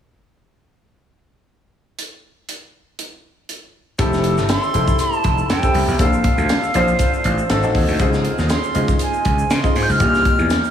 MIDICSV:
0, 0, Header, 1, 5, 480
1, 0, Start_track
1, 0, Key_signature, -1, "major"
1, 0, Tempo, 500835
1, 1907, Time_signature, 4, 2, 24, 8
1, 10260, End_track
2, 0, Start_track
2, 0, Title_t, "Flute"
2, 0, Program_c, 0, 73
2, 4324, Note_on_c, 0, 84, 96
2, 4797, Note_on_c, 0, 81, 89
2, 4811, Note_off_c, 0, 84, 0
2, 5271, Note_off_c, 0, 81, 0
2, 5278, Note_on_c, 0, 79, 90
2, 5719, Note_off_c, 0, 79, 0
2, 5761, Note_on_c, 0, 77, 83
2, 7395, Note_off_c, 0, 77, 0
2, 8161, Note_on_c, 0, 84, 84
2, 8600, Note_off_c, 0, 84, 0
2, 8645, Note_on_c, 0, 80, 82
2, 9133, Note_on_c, 0, 84, 95
2, 9147, Note_off_c, 0, 80, 0
2, 9417, Note_on_c, 0, 91, 69
2, 9431, Note_off_c, 0, 84, 0
2, 9497, Note_on_c, 0, 89, 90
2, 9512, Note_off_c, 0, 91, 0
2, 10208, Note_off_c, 0, 89, 0
2, 10260, End_track
3, 0, Start_track
3, 0, Title_t, "Grand piano"
3, 0, Program_c, 1, 0
3, 3818, Note_on_c, 1, 60, 87
3, 3822, Note_on_c, 1, 64, 79
3, 3825, Note_on_c, 1, 67, 74
3, 3831, Note_on_c, 1, 69, 93
3, 3996, Control_c, 1, 64, 127
3, 4481, Note_off_c, 1, 60, 0
3, 4483, Note_off_c, 1, 64, 0
3, 4485, Note_off_c, 1, 67, 0
3, 4487, Note_off_c, 1, 69, 0
3, 4540, Note_on_c, 1, 60, 65
3, 4544, Note_on_c, 1, 64, 64
3, 4548, Note_on_c, 1, 67, 62
3, 4554, Note_on_c, 1, 69, 69
3, 5309, Note_off_c, 1, 60, 0
3, 5311, Note_off_c, 1, 64, 0
3, 5313, Note_off_c, 1, 67, 0
3, 5316, Note_off_c, 1, 69, 0
3, 5385, Note_on_c, 1, 60, 64
3, 5390, Note_on_c, 1, 64, 59
3, 5394, Note_on_c, 1, 67, 63
3, 5396, Note_on_c, 1, 69, 77
3, 5710, Note_off_c, 1, 60, 0
3, 5713, Note_off_c, 1, 64, 0
3, 5714, Note_off_c, 1, 67, 0
3, 5715, Note_off_c, 1, 69, 0
3, 5743, Note_on_c, 1, 60, 67
3, 5746, Note_on_c, 1, 62, 68
3, 5750, Note_on_c, 1, 65, 60
3, 5753, Note_on_c, 1, 69, 81
3, 5758, Control_c, 1, 64, 0
3, 5950, Control_c, 1, 64, 127
3, 6403, Note_off_c, 1, 60, 0
3, 6405, Note_off_c, 1, 62, 0
3, 6407, Note_off_c, 1, 65, 0
3, 6409, Note_off_c, 1, 69, 0
3, 6461, Note_on_c, 1, 60, 79
3, 6464, Note_on_c, 1, 62, 73
3, 6470, Note_on_c, 1, 65, 72
3, 6472, Note_on_c, 1, 72, 91
3, 7167, Note_off_c, 1, 60, 0
3, 7181, Note_on_c, 1, 60, 84
3, 7185, Note_off_c, 1, 62, 0
3, 7185, Note_on_c, 1, 63, 81
3, 7188, Note_off_c, 1, 65, 0
3, 7188, Note_on_c, 1, 66, 79
3, 7189, Note_off_c, 1, 72, 0
3, 7193, Note_on_c, 1, 69, 94
3, 7197, Control_c, 1, 64, 0
3, 7295, Note_off_c, 1, 60, 0
3, 7299, Note_off_c, 1, 63, 0
3, 7303, Note_off_c, 1, 66, 0
3, 7307, Note_off_c, 1, 69, 0
3, 7309, Note_on_c, 1, 60, 84
3, 7314, Note_on_c, 1, 63, 77
3, 7317, Note_on_c, 1, 66, 80
3, 7321, Note_on_c, 1, 69, 87
3, 7338, Control_c, 1, 64, 127
3, 7632, Note_off_c, 1, 60, 0
3, 7635, Note_off_c, 1, 63, 0
3, 7636, Note_off_c, 1, 66, 0
3, 7638, Note_off_c, 1, 69, 0
3, 7660, Note_on_c, 1, 60, 85
3, 7663, Note_on_c, 1, 63, 75
3, 7668, Note_on_c, 1, 65, 75
3, 7672, Note_on_c, 1, 68, 97
3, 7679, Control_c, 1, 64, 0
3, 7867, Control_c, 1, 64, 127
3, 8322, Note_off_c, 1, 60, 0
3, 8324, Note_off_c, 1, 63, 0
3, 8327, Note_off_c, 1, 65, 0
3, 8329, Note_off_c, 1, 68, 0
3, 8377, Note_on_c, 1, 60, 66
3, 8383, Note_on_c, 1, 63, 61
3, 8386, Note_on_c, 1, 65, 63
3, 8390, Note_on_c, 1, 68, 75
3, 9149, Note_off_c, 1, 60, 0
3, 9152, Note_off_c, 1, 63, 0
3, 9153, Note_off_c, 1, 65, 0
3, 9155, Note_off_c, 1, 68, 0
3, 9226, Note_on_c, 1, 60, 65
3, 9231, Note_on_c, 1, 63, 65
3, 9234, Note_on_c, 1, 65, 59
3, 9238, Note_on_c, 1, 68, 75
3, 9552, Note_off_c, 1, 60, 0
3, 9554, Note_off_c, 1, 63, 0
3, 9555, Note_off_c, 1, 65, 0
3, 9557, Note_off_c, 1, 68, 0
3, 9580, Note_on_c, 1, 58, 72
3, 9584, Note_on_c, 1, 62, 64
3, 9589, Note_on_c, 1, 65, 63
3, 9591, Note_on_c, 1, 67, 75
3, 9597, Control_c, 1, 64, 0
3, 9782, Control_c, 1, 64, 127
3, 10244, Note_off_c, 1, 58, 0
3, 10246, Note_off_c, 1, 62, 0
3, 10248, Note_off_c, 1, 65, 0
3, 10249, Note_off_c, 1, 67, 0
3, 10260, End_track
4, 0, Start_track
4, 0, Title_t, "Slap bass"
4, 0, Program_c, 2, 36
4, 3824, Note_on_c, 2, 29, 96
4, 4192, Note_off_c, 2, 29, 0
4, 4192, Note_on_c, 2, 31, 75
4, 4359, Note_off_c, 2, 31, 0
4, 4544, Note_on_c, 2, 29, 74
4, 4710, Note_off_c, 2, 29, 0
4, 5025, Note_on_c, 2, 29, 88
4, 5191, Note_off_c, 2, 29, 0
4, 5267, Note_on_c, 2, 41, 88
4, 5356, Note_off_c, 2, 41, 0
4, 5504, Note_on_c, 2, 36, 77
4, 5594, Note_off_c, 2, 36, 0
4, 5632, Note_on_c, 2, 35, 80
4, 5745, Note_off_c, 2, 35, 0
4, 5745, Note_on_c, 2, 34, 103
4, 6001, Note_off_c, 2, 34, 0
4, 6111, Note_on_c, 2, 38, 83
4, 6278, Note_off_c, 2, 38, 0
4, 6465, Note_on_c, 2, 34, 79
4, 6631, Note_off_c, 2, 34, 0
4, 6946, Note_on_c, 2, 33, 94
4, 7112, Note_off_c, 2, 33, 0
4, 7185, Note_on_c, 2, 32, 89
4, 7314, Note_off_c, 2, 32, 0
4, 7314, Note_on_c, 2, 33, 86
4, 7391, Note_off_c, 2, 33, 0
4, 7425, Note_on_c, 2, 39, 78
4, 7515, Note_off_c, 2, 39, 0
4, 7553, Note_on_c, 2, 38, 67
4, 7630, Note_off_c, 2, 38, 0
4, 7663, Note_on_c, 2, 37, 102
4, 7920, Note_off_c, 2, 37, 0
4, 8034, Note_on_c, 2, 39, 82
4, 8201, Note_off_c, 2, 39, 0
4, 8386, Note_on_c, 2, 37, 78
4, 8552, Note_off_c, 2, 37, 0
4, 8869, Note_on_c, 2, 37, 91
4, 9034, Note_off_c, 2, 37, 0
4, 9105, Note_on_c, 2, 49, 93
4, 9195, Note_off_c, 2, 49, 0
4, 9346, Note_on_c, 2, 44, 81
4, 9436, Note_off_c, 2, 44, 0
4, 9480, Note_on_c, 2, 37, 82
4, 9556, Note_off_c, 2, 37, 0
4, 9587, Note_on_c, 2, 36, 99
4, 9843, Note_off_c, 2, 36, 0
4, 9955, Note_on_c, 2, 40, 82
4, 10122, Note_off_c, 2, 40, 0
4, 10260, End_track
5, 0, Start_track
5, 0, Title_t, "Drums"
5, 1904, Note_on_c, 9, 42, 53
5, 2000, Note_off_c, 9, 42, 0
5, 2383, Note_on_c, 9, 42, 54
5, 2479, Note_off_c, 9, 42, 0
5, 2865, Note_on_c, 9, 42, 56
5, 2960, Note_off_c, 9, 42, 0
5, 3346, Note_on_c, 9, 42, 51
5, 3441, Note_off_c, 9, 42, 0
5, 3822, Note_on_c, 9, 42, 78
5, 3823, Note_on_c, 9, 82, 65
5, 3824, Note_on_c, 9, 36, 109
5, 3918, Note_off_c, 9, 42, 0
5, 3919, Note_off_c, 9, 82, 0
5, 3920, Note_off_c, 9, 36, 0
5, 3957, Note_on_c, 9, 82, 44
5, 3961, Note_on_c, 9, 38, 35
5, 4053, Note_off_c, 9, 82, 0
5, 4057, Note_off_c, 9, 38, 0
5, 4062, Note_on_c, 9, 42, 61
5, 4158, Note_off_c, 9, 42, 0
5, 4194, Note_on_c, 9, 82, 43
5, 4197, Note_on_c, 9, 38, 33
5, 4290, Note_off_c, 9, 82, 0
5, 4293, Note_off_c, 9, 38, 0
5, 4302, Note_on_c, 9, 42, 77
5, 4302, Note_on_c, 9, 82, 64
5, 4309, Note_on_c, 9, 38, 108
5, 4398, Note_off_c, 9, 42, 0
5, 4398, Note_off_c, 9, 82, 0
5, 4405, Note_off_c, 9, 38, 0
5, 4436, Note_on_c, 9, 82, 44
5, 4532, Note_off_c, 9, 82, 0
5, 4543, Note_on_c, 9, 42, 64
5, 4545, Note_on_c, 9, 82, 42
5, 4639, Note_off_c, 9, 42, 0
5, 4640, Note_off_c, 9, 82, 0
5, 4672, Note_on_c, 9, 82, 51
5, 4673, Note_on_c, 9, 36, 76
5, 4768, Note_off_c, 9, 82, 0
5, 4769, Note_off_c, 9, 36, 0
5, 4781, Note_on_c, 9, 42, 79
5, 4784, Note_on_c, 9, 82, 65
5, 4877, Note_off_c, 9, 42, 0
5, 4879, Note_off_c, 9, 82, 0
5, 4914, Note_on_c, 9, 82, 46
5, 5010, Note_off_c, 9, 82, 0
5, 5022, Note_on_c, 9, 42, 59
5, 5025, Note_on_c, 9, 82, 41
5, 5027, Note_on_c, 9, 36, 80
5, 5118, Note_off_c, 9, 42, 0
5, 5121, Note_off_c, 9, 82, 0
5, 5123, Note_off_c, 9, 36, 0
5, 5156, Note_on_c, 9, 82, 45
5, 5252, Note_off_c, 9, 82, 0
5, 5267, Note_on_c, 9, 82, 64
5, 5268, Note_on_c, 9, 42, 75
5, 5271, Note_on_c, 9, 38, 109
5, 5363, Note_off_c, 9, 82, 0
5, 5364, Note_off_c, 9, 42, 0
5, 5367, Note_off_c, 9, 38, 0
5, 5396, Note_on_c, 9, 36, 86
5, 5396, Note_on_c, 9, 82, 41
5, 5492, Note_off_c, 9, 36, 0
5, 5492, Note_off_c, 9, 82, 0
5, 5505, Note_on_c, 9, 46, 69
5, 5601, Note_off_c, 9, 46, 0
5, 5640, Note_on_c, 9, 82, 45
5, 5736, Note_off_c, 9, 82, 0
5, 5742, Note_on_c, 9, 42, 83
5, 5744, Note_on_c, 9, 36, 103
5, 5746, Note_on_c, 9, 82, 66
5, 5838, Note_off_c, 9, 42, 0
5, 5840, Note_off_c, 9, 36, 0
5, 5842, Note_off_c, 9, 82, 0
5, 5875, Note_on_c, 9, 82, 45
5, 5971, Note_off_c, 9, 82, 0
5, 5981, Note_on_c, 9, 42, 62
5, 5984, Note_on_c, 9, 36, 85
5, 6077, Note_off_c, 9, 42, 0
5, 6080, Note_off_c, 9, 36, 0
5, 6114, Note_on_c, 9, 82, 40
5, 6210, Note_off_c, 9, 82, 0
5, 6221, Note_on_c, 9, 82, 62
5, 6223, Note_on_c, 9, 42, 76
5, 6230, Note_on_c, 9, 38, 111
5, 6317, Note_off_c, 9, 82, 0
5, 6318, Note_off_c, 9, 42, 0
5, 6325, Note_off_c, 9, 38, 0
5, 6358, Note_on_c, 9, 82, 45
5, 6454, Note_off_c, 9, 82, 0
5, 6461, Note_on_c, 9, 42, 64
5, 6464, Note_on_c, 9, 82, 43
5, 6557, Note_off_c, 9, 42, 0
5, 6560, Note_off_c, 9, 82, 0
5, 6593, Note_on_c, 9, 82, 50
5, 6689, Note_off_c, 9, 82, 0
5, 6698, Note_on_c, 9, 42, 83
5, 6704, Note_on_c, 9, 36, 78
5, 6704, Note_on_c, 9, 82, 67
5, 6794, Note_off_c, 9, 42, 0
5, 6799, Note_off_c, 9, 36, 0
5, 6800, Note_off_c, 9, 82, 0
5, 6838, Note_on_c, 9, 82, 46
5, 6934, Note_off_c, 9, 82, 0
5, 6941, Note_on_c, 9, 42, 57
5, 6949, Note_on_c, 9, 82, 44
5, 7037, Note_off_c, 9, 42, 0
5, 7045, Note_off_c, 9, 82, 0
5, 7076, Note_on_c, 9, 82, 49
5, 7172, Note_off_c, 9, 82, 0
5, 7185, Note_on_c, 9, 42, 81
5, 7188, Note_on_c, 9, 38, 104
5, 7189, Note_on_c, 9, 82, 60
5, 7281, Note_off_c, 9, 42, 0
5, 7283, Note_off_c, 9, 38, 0
5, 7285, Note_off_c, 9, 82, 0
5, 7315, Note_on_c, 9, 82, 43
5, 7411, Note_off_c, 9, 82, 0
5, 7424, Note_on_c, 9, 46, 74
5, 7426, Note_on_c, 9, 36, 83
5, 7520, Note_off_c, 9, 46, 0
5, 7522, Note_off_c, 9, 36, 0
5, 7557, Note_on_c, 9, 82, 43
5, 7653, Note_off_c, 9, 82, 0
5, 7662, Note_on_c, 9, 42, 81
5, 7662, Note_on_c, 9, 82, 69
5, 7664, Note_on_c, 9, 36, 101
5, 7758, Note_off_c, 9, 42, 0
5, 7758, Note_off_c, 9, 82, 0
5, 7760, Note_off_c, 9, 36, 0
5, 7793, Note_on_c, 9, 82, 44
5, 7798, Note_on_c, 9, 38, 35
5, 7889, Note_off_c, 9, 82, 0
5, 7894, Note_off_c, 9, 38, 0
5, 7903, Note_on_c, 9, 42, 60
5, 7999, Note_off_c, 9, 42, 0
5, 8033, Note_on_c, 9, 82, 43
5, 8039, Note_on_c, 9, 38, 34
5, 8129, Note_off_c, 9, 82, 0
5, 8135, Note_off_c, 9, 38, 0
5, 8139, Note_on_c, 9, 82, 65
5, 8143, Note_on_c, 9, 42, 73
5, 8150, Note_on_c, 9, 38, 102
5, 8235, Note_off_c, 9, 82, 0
5, 8239, Note_off_c, 9, 42, 0
5, 8246, Note_off_c, 9, 38, 0
5, 8276, Note_on_c, 9, 82, 46
5, 8372, Note_off_c, 9, 82, 0
5, 8382, Note_on_c, 9, 82, 43
5, 8384, Note_on_c, 9, 42, 65
5, 8478, Note_off_c, 9, 82, 0
5, 8480, Note_off_c, 9, 42, 0
5, 8512, Note_on_c, 9, 82, 52
5, 8513, Note_on_c, 9, 36, 83
5, 8608, Note_off_c, 9, 82, 0
5, 8609, Note_off_c, 9, 36, 0
5, 8619, Note_on_c, 9, 42, 82
5, 8624, Note_on_c, 9, 82, 69
5, 8715, Note_off_c, 9, 42, 0
5, 8720, Note_off_c, 9, 82, 0
5, 8757, Note_on_c, 9, 82, 41
5, 8853, Note_off_c, 9, 82, 0
5, 8864, Note_on_c, 9, 42, 57
5, 8869, Note_on_c, 9, 36, 81
5, 8869, Note_on_c, 9, 82, 44
5, 8960, Note_off_c, 9, 42, 0
5, 8964, Note_off_c, 9, 36, 0
5, 8965, Note_off_c, 9, 82, 0
5, 8995, Note_on_c, 9, 82, 50
5, 9091, Note_off_c, 9, 82, 0
5, 9109, Note_on_c, 9, 42, 72
5, 9109, Note_on_c, 9, 82, 67
5, 9112, Note_on_c, 9, 38, 103
5, 9205, Note_off_c, 9, 42, 0
5, 9205, Note_off_c, 9, 82, 0
5, 9208, Note_off_c, 9, 38, 0
5, 9238, Note_on_c, 9, 36, 85
5, 9240, Note_on_c, 9, 82, 42
5, 9334, Note_off_c, 9, 36, 0
5, 9336, Note_off_c, 9, 82, 0
5, 9349, Note_on_c, 9, 46, 70
5, 9445, Note_off_c, 9, 46, 0
5, 9484, Note_on_c, 9, 82, 43
5, 9580, Note_off_c, 9, 82, 0
5, 9583, Note_on_c, 9, 42, 85
5, 9586, Note_on_c, 9, 36, 106
5, 9589, Note_on_c, 9, 82, 71
5, 9679, Note_off_c, 9, 42, 0
5, 9682, Note_off_c, 9, 36, 0
5, 9685, Note_off_c, 9, 82, 0
5, 9720, Note_on_c, 9, 82, 43
5, 9724, Note_on_c, 9, 38, 37
5, 9816, Note_off_c, 9, 82, 0
5, 9819, Note_off_c, 9, 38, 0
5, 9827, Note_on_c, 9, 36, 85
5, 9827, Note_on_c, 9, 42, 60
5, 9923, Note_off_c, 9, 36, 0
5, 9923, Note_off_c, 9, 42, 0
5, 9956, Note_on_c, 9, 82, 40
5, 10052, Note_off_c, 9, 82, 0
5, 10062, Note_on_c, 9, 82, 68
5, 10067, Note_on_c, 9, 42, 81
5, 10074, Note_on_c, 9, 38, 107
5, 10158, Note_off_c, 9, 82, 0
5, 10162, Note_off_c, 9, 42, 0
5, 10169, Note_off_c, 9, 38, 0
5, 10199, Note_on_c, 9, 82, 46
5, 10260, Note_off_c, 9, 82, 0
5, 10260, End_track
0, 0, End_of_file